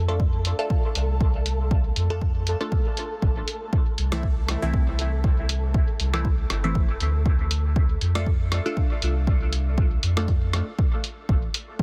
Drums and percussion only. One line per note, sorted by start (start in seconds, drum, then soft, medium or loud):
0.20 kick loud
0.45 closed hi-hat medium
0.70 kick loud
0.95 closed hi-hat medium
1.21 kick loud
1.46 closed hi-hat medium
1.71 kick loud
1.96 closed hi-hat medium
2.21 kick loud
2.47 closed hi-hat medium
2.72 kick loud
2.97 closed hi-hat medium
3.22 kick loud
3.48 closed hi-hat medium
3.73 kick loud
3.98 closed hi-hat medium
4.12 cross-stick medium
4.23 kick loud
4.49 cross-stick medium
4.49 closed hi-hat medium
4.74 kick loud
4.99 closed hi-hat medium
5.24 kick loud
5.49 closed hi-hat medium
5.74 kick loud
6.00 closed hi-hat medium
6.14 cross-stick medium
6.25 kick loud
6.50 cross-stick medium
6.50 closed hi-hat medium
6.75 kick loud
7.00 closed hi-hat medium
7.26 kick loud
7.51 closed hi-hat medium
7.76 kick loud
8.01 closed hi-hat medium
8.15 cross-stick medium
8.26 kick loud
8.52 cross-stick medium
8.52 closed hi-hat medium
8.77 kick loud
9.02 closed hi-hat medium
9.27 kick loud
9.53 closed hi-hat medium
9.78 kick loud
10.03 closed hi-hat medium
10.17 cross-stick medium
10.28 kick loud
10.28 closed hi-hat soft
10.53 cross-stick medium
10.53 closed hi-hat medium
10.79 kick loud
11.04 closed hi-hat medium
11.29 kick loud
11.54 closed hi-hat medium
11.79 kick loud